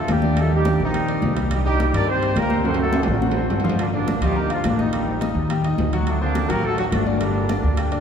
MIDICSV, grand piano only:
0, 0, Header, 1, 2, 480
1, 0, Start_track
1, 0, Key_signature, -2, "minor"
1, 0, Tempo, 284900
1, 628, Time_signature, 4, 2, 24, 8
1, 13482, End_track
2, 0, Start_track
2, 0, Title_t, "Grand piano"
2, 0, Program_c, 0, 0
2, 0, Note_on_c, 0, 65, 68
2, 0, Note_on_c, 0, 77, 69
2, 307, Note_off_c, 0, 65, 0
2, 311, Note_off_c, 0, 77, 0
2, 390, Note_on_c, 0, 62, 68
2, 397, Note_on_c, 0, 74, 68
2, 586, Note_off_c, 0, 62, 0
2, 590, Note_off_c, 0, 74, 0
2, 624, Note_on_c, 0, 55, 72
2, 627, Note_on_c, 0, 67, 72
2, 1019, Note_off_c, 0, 55, 0
2, 1021, Note_off_c, 0, 67, 0
2, 1104, Note_on_c, 0, 62, 65
2, 1112, Note_on_c, 0, 74, 65
2, 1499, Note_off_c, 0, 62, 0
2, 1504, Note_off_c, 0, 74, 0
2, 1591, Note_on_c, 0, 67, 65
2, 1597, Note_on_c, 0, 79, 62
2, 1787, Note_off_c, 0, 67, 0
2, 1790, Note_off_c, 0, 79, 0
2, 1823, Note_on_c, 0, 62, 67
2, 1825, Note_on_c, 0, 74, 68
2, 2219, Note_off_c, 0, 62, 0
2, 2220, Note_off_c, 0, 74, 0
2, 2298, Note_on_c, 0, 55, 81
2, 2298, Note_on_c, 0, 67, 79
2, 2695, Note_off_c, 0, 55, 0
2, 2696, Note_off_c, 0, 67, 0
2, 2776, Note_on_c, 0, 75, 66
2, 2777, Note_on_c, 0, 63, 65
2, 3174, Note_off_c, 0, 75, 0
2, 3175, Note_off_c, 0, 63, 0
2, 3258, Note_on_c, 0, 55, 87
2, 3266, Note_on_c, 0, 67, 85
2, 3459, Note_off_c, 0, 55, 0
2, 3463, Note_off_c, 0, 67, 0
2, 3496, Note_on_c, 0, 60, 63
2, 3500, Note_on_c, 0, 72, 64
2, 3697, Note_off_c, 0, 60, 0
2, 3700, Note_off_c, 0, 72, 0
2, 3737, Note_on_c, 0, 67, 70
2, 3740, Note_on_c, 0, 79, 68
2, 4135, Note_off_c, 0, 67, 0
2, 4137, Note_off_c, 0, 79, 0
2, 4215, Note_on_c, 0, 60, 68
2, 4217, Note_on_c, 0, 72, 72
2, 4417, Note_off_c, 0, 60, 0
2, 4418, Note_off_c, 0, 72, 0
2, 4452, Note_on_c, 0, 54, 71
2, 4455, Note_on_c, 0, 66, 72
2, 4852, Note_off_c, 0, 54, 0
2, 4854, Note_off_c, 0, 66, 0
2, 4942, Note_on_c, 0, 60, 67
2, 4942, Note_on_c, 0, 72, 67
2, 5338, Note_off_c, 0, 60, 0
2, 5338, Note_off_c, 0, 72, 0
2, 5421, Note_on_c, 0, 66, 62
2, 5423, Note_on_c, 0, 78, 64
2, 5621, Note_off_c, 0, 66, 0
2, 5622, Note_off_c, 0, 78, 0
2, 5666, Note_on_c, 0, 60, 66
2, 5672, Note_on_c, 0, 72, 68
2, 6060, Note_off_c, 0, 60, 0
2, 6064, Note_off_c, 0, 72, 0
2, 6130, Note_on_c, 0, 53, 75
2, 6139, Note_on_c, 0, 65, 80
2, 6531, Note_off_c, 0, 53, 0
2, 6537, Note_off_c, 0, 65, 0
2, 6632, Note_on_c, 0, 62, 69
2, 6637, Note_on_c, 0, 74, 66
2, 7024, Note_off_c, 0, 62, 0
2, 7027, Note_off_c, 0, 74, 0
2, 7114, Note_on_c, 0, 53, 82
2, 7115, Note_on_c, 0, 65, 85
2, 7308, Note_off_c, 0, 53, 0
2, 7309, Note_off_c, 0, 65, 0
2, 7348, Note_on_c, 0, 58, 64
2, 7353, Note_on_c, 0, 70, 68
2, 7545, Note_off_c, 0, 58, 0
2, 7548, Note_off_c, 0, 70, 0
2, 7574, Note_on_c, 0, 65, 70
2, 7581, Note_on_c, 0, 77, 66
2, 7974, Note_off_c, 0, 65, 0
2, 7978, Note_off_c, 0, 77, 0
2, 8062, Note_on_c, 0, 63, 69
2, 8069, Note_on_c, 0, 75, 71
2, 8262, Note_off_c, 0, 63, 0
2, 8266, Note_off_c, 0, 75, 0
2, 8307, Note_on_c, 0, 55, 70
2, 8312, Note_on_c, 0, 67, 72
2, 8701, Note_off_c, 0, 55, 0
2, 8704, Note_off_c, 0, 67, 0
2, 8783, Note_on_c, 0, 63, 65
2, 8787, Note_on_c, 0, 75, 62
2, 9179, Note_off_c, 0, 63, 0
2, 9181, Note_off_c, 0, 75, 0
2, 9278, Note_on_c, 0, 67, 69
2, 9281, Note_on_c, 0, 79, 68
2, 9471, Note_off_c, 0, 67, 0
2, 9473, Note_off_c, 0, 79, 0
2, 9507, Note_on_c, 0, 75, 68
2, 9508, Note_on_c, 0, 63, 65
2, 9901, Note_off_c, 0, 75, 0
2, 9902, Note_off_c, 0, 63, 0
2, 9992, Note_on_c, 0, 54, 79
2, 9997, Note_on_c, 0, 66, 80
2, 10384, Note_off_c, 0, 54, 0
2, 10387, Note_off_c, 0, 66, 0
2, 10471, Note_on_c, 0, 60, 66
2, 10471, Note_on_c, 0, 72, 68
2, 10863, Note_off_c, 0, 60, 0
2, 10863, Note_off_c, 0, 72, 0
2, 10932, Note_on_c, 0, 54, 87
2, 10940, Note_on_c, 0, 66, 80
2, 11136, Note_off_c, 0, 54, 0
2, 11140, Note_off_c, 0, 66, 0
2, 11182, Note_on_c, 0, 57, 67
2, 11193, Note_on_c, 0, 69, 63
2, 11381, Note_off_c, 0, 57, 0
2, 11388, Note_off_c, 0, 69, 0
2, 11437, Note_on_c, 0, 66, 68
2, 11442, Note_on_c, 0, 78, 69
2, 11827, Note_off_c, 0, 66, 0
2, 11830, Note_off_c, 0, 78, 0
2, 11900, Note_on_c, 0, 62, 70
2, 11906, Note_on_c, 0, 74, 73
2, 12100, Note_off_c, 0, 62, 0
2, 12104, Note_off_c, 0, 74, 0
2, 12152, Note_on_c, 0, 55, 75
2, 12159, Note_on_c, 0, 67, 72
2, 12544, Note_off_c, 0, 55, 0
2, 12548, Note_off_c, 0, 67, 0
2, 12624, Note_on_c, 0, 62, 65
2, 12629, Note_on_c, 0, 74, 67
2, 13019, Note_off_c, 0, 62, 0
2, 13022, Note_off_c, 0, 74, 0
2, 13105, Note_on_c, 0, 67, 64
2, 13115, Note_on_c, 0, 79, 66
2, 13303, Note_off_c, 0, 67, 0
2, 13309, Note_off_c, 0, 79, 0
2, 13341, Note_on_c, 0, 62, 67
2, 13341, Note_on_c, 0, 74, 70
2, 13482, Note_off_c, 0, 62, 0
2, 13482, Note_off_c, 0, 74, 0
2, 13482, End_track
0, 0, End_of_file